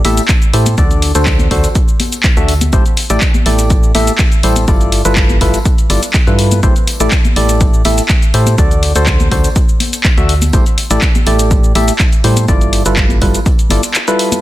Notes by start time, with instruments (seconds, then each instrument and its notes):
0.05 fm bass A1, synth stab A3 E4 G4 A4 E5, open hi-hat, tambourine, high conga
0.17 closed hi-hat, tambourine, shaker
0.28 kick, clap, closed hi-hat, shaker
0.42 closed hi-hat, shaker
0.53 fm bass A2, synth stab E4 G4 A4 C5, open hi-hat, tambourine
0.66 closed hi-hat, tambourine, high conga, shaker
0.77 fm bass D2, synth stab D3 D4 F#4 A4 D5, kick, closed hi-hat, tambourine, shaker
0.91 closed hi-hat, shaker
1.02 open hi-hat, tambourine
1.15 fm bass D2, synth stab D3 D4 F#4 A4 C5, closed hi-hat, tambourine, shaker
1.26 kick, clap, closed hi-hat, shaker
1.39 closed hi-hat, high conga, shaker
1.51 fm bass D2, synth stab D3 D4 F#4 A4 C5, kick, open hi-hat, tambourine
1.64 closed hi-hat, tambourine, shaker
1.75 kick, closed hi-hat, shaker
1.88 shaker
2.00 open hi-hat, tambourine, high conga
2.12 closed hi-hat, tambourine, shaker
2.24 kick, clap, closed hi-hat, shaker
2.37 fm bass D2, synth stab D3 D4 F#4 A4 E5, closed hi-hat, shaker
2.48 open hi-hat, tambourine
2.61 closed hi-hat, tambourine, high conga, shaker
2.72 fm bass A1, synth stab A3 E4 G4 A4 C5, kick, closed hi-hat, tambourine, shaker
2.86 closed hi-hat, shaker
2.97 open hi-hat, tambourine
3.10 fm bass A1, synth stab A3 E4 G4 A4 D5, closed hi-hat, tambourine, shaker
3.21 kick, clap, closed hi-hat, tambourine, shaker
3.34 closed hi-hat, high conga, shaker
3.46 fm bass A1, synth stab A3 E4 G4 A4 D5, open hi-hat, tambourine
3.59 closed hi-hat, tambourine, shaker
3.70 kick, closed hi-hat, tambourine, shaker
3.83 shaker
3.95 fm bass A1, synth stab A3 E4 G4 A4 E5, open hi-hat, tambourine, high conga
4.07 closed hi-hat, tambourine, shaker
4.18 kick, clap, closed hi-hat, shaker
4.32 closed hi-hat, shaker
4.43 fm bass A1, synth stab G3 E4 G4 A4 C5, open hi-hat, tambourine
4.56 closed hi-hat, tambourine, high conga, shaker
4.68 fm bass G1, synth stab G3 E4 F4 A4 D5, kick, closed hi-hat, tambourine, shaker
4.81 closed hi-hat, shaker
4.92 open hi-hat, tambourine
5.05 fm bass G1, synth stab G3 E4 F4 A4 B4, closed hi-hat, tambourine, shaker
5.16 kick, clap, closed hi-hat, tambourine, shaker
5.29 closed hi-hat, high conga, shaker
5.41 fm bass G1, synth stab G3 E4 F4 A4 B4, kick, open hi-hat, tambourine
5.54 closed hi-hat, tambourine, shaker
5.65 kick, closed hi-hat, tambourine, shaker
5.78 closed hi-hat, shaker
5.90 fm bass G1, synth stab G3 E4 F4 A4 D5, open hi-hat, tambourine, high conga
6.03 closed hi-hat, tambourine, shaker
6.14 kick, clap, closed hi-hat, tambourine, shaker
6.27 fm bass G2, synth stab G3 E4 F4 A4 B4, closed hi-hat, shaker
6.39 open hi-hat, tambourine
6.51 closed hi-hat, tambourine, high conga, shaker
6.63 fm bass A1, synth stab A3 E4 G4 A4 C5, kick, closed hi-hat, tambourine, shaker
6.76 closed hi-hat, shaker
6.87 open hi-hat, tambourine
7.00 fm bass A1, synth stab A3 E4 G4 A4 D5, closed hi-hat, tambourine, shaker
7.11 kick, clap, closed hi-hat, tambourine, shaker
7.25 closed hi-hat, high conga, shaker
7.36 fm bass A1, synth stab A3 E4 G4 A4 D5, open hi-hat, tambourine
7.49 closed hi-hat, tambourine, shaker
7.61 kick, closed hi-hat, tambourine, shaker
7.74 shaker
7.85 fm bass A1, synth stab A3 E4 G4 A4 E5, open hi-hat, tambourine, high conga
7.98 closed hi-hat, tambourine, shaker
8.09 kick, clap, closed hi-hat, tambourine, shaker
8.22 closed hi-hat, shaker
8.34 fm bass A2, synth stab E4 G4 A4 C5, open hi-hat, tambourine
8.46 closed hi-hat, tambourine, high conga, shaker
8.58 fm bass D2, synth stab D3 D4 F#4 A4 D5, kick, closed hi-hat, tambourine, shaker
8.71 closed hi-hat, shaker
8.83 open hi-hat, tambourine
8.95 fm bass D2, synth stab D3 D4 F#4 A4 C5, closed hi-hat, tambourine, shaker
9.07 kick, clap, closed hi-hat, shaker
9.20 closed hi-hat, high conga, shaker
9.31 fm bass D2, synth stab D3 D4 F#4 A4 C5, kick, open hi-hat, tambourine
9.44 closed hi-hat, tambourine, shaker
9.55 kick, closed hi-hat, tambourine, shaker
9.69 shaker
9.80 open hi-hat, tambourine, high conga
9.93 closed hi-hat, tambourine, shaker
10.04 kick, clap, closed hi-hat, shaker
10.17 fm bass D2, synth stab D3 D4 F#4 A4 E5, closed hi-hat, shaker
10.29 open hi-hat, tambourine
10.41 closed hi-hat, tambourine, high conga, shaker
10.53 fm bass A1, synth stab A3 E4 G4 A4 C5, kick, closed hi-hat, tambourine, shaker
10.66 closed hi-hat, shaker
10.78 open hi-hat, tambourine
10.90 fm bass A1, synth stab A3 E4 G4 A4 D5, closed hi-hat, tambourine, shaker
11.02 kick, clap, closed hi-hat, tambourine, shaker
11.15 closed hi-hat, high conga, shaker
11.26 fm bass A1, synth stab A3 E4 G4 A4 D5, open hi-hat, tambourine
11.39 closed hi-hat, tambourine, shaker
11.51 kick, closed hi-hat, tambourine, shaker
11.64 shaker
11.75 fm bass A1, synth stab A3 E4 G4 A4 E5, open hi-hat, tambourine, high conga
11.88 closed hi-hat, tambourine, shaker
11.99 kick, clap, closed hi-hat, tambourine, shaker
12.12 closed hi-hat, shaker
12.24 fm bass A2, synth stab G3 E4 G4 A4 C5, open hi-hat, tambourine
12.37 closed hi-hat, tambourine, high conga, shaker
12.48 fm bass G1, synth stab G3 E4 F4 A4 D5, kick, closed hi-hat, tambourine, shaker
12.61 closed hi-hat, shaker
12.73 open hi-hat, tambourine
12.85 fm bass G1, synth stab G3 E4 F4 A4 B4, closed hi-hat, tambourine, shaker
12.97 kick, clap, closed hi-hat, tambourine, shaker
13.09 closed hi-hat, high conga, shaker
13.21 fm bass G1, synth stab G3 E4 F4 A4 B4, kick, open hi-hat, tambourine
13.34 closed hi-hat, tambourine, shaker
13.45 kick, closed hi-hat, tambourine, shaker
13.59 closed hi-hat, shaker
13.69 fm bass G1, synth stab G3 E4 F4 A4 D5, open hi-hat, tambourine, high conga
13.83 closed hi-hat, tambourine, shaker
13.94 clap, closed hi-hat, tambourine, shaker
14.08 synth stab G3 E4 F4 A4 B4, closed hi-hat, shaker
14.19 open hi-hat, tambourine
14.32 closed hi-hat, tambourine, high conga, shaker